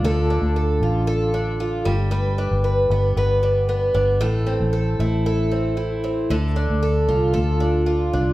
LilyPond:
<<
  \new Staff \with { instrumentName = "Twelve-string acoustic guitar" } { \time 4/4 \key d \dorian \tempo 4 = 115 <d d' f' a'>8 d'8 a'8 f'8 a'8 d'8 f'8 g8 | <g b'>8 d'8 b'8 b8 b'8 d'8 b8 d'8 | <a, a'>8 c'8 a'8 e'8 a'8 c'8 e'8 c'8 | <d a'>8 d'8 a'8 f'8 a'8 d'8 f'8 d'8 | }
  \new Staff \with { instrumentName = "Fingered electric bass" } { \clef bass \time 4/4 \key d \dorian d,8. d,8. a,,2 g,,8~ | g,,8. g,,8. g,,8 g,,4. g,,8 | a,,8. a,,8. a,,2~ a,,8 | d,8. d,8. c,8 d,4. c,8 | }
>>